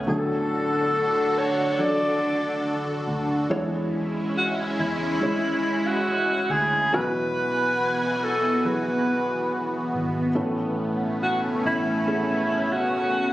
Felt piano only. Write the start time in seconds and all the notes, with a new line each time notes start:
0.07 A2 F#3 D4 A4
1.79 F#3 D4 A4
3.50 E3 G#3 E4 C#5
5.21 G#3 E4 C#5
6.93 B2 F#3 E4 F#4
8.65 F#3 E4 G#4
10.35 A2 E3 A3 C#4 B4
12.07 A3 C#4 G#4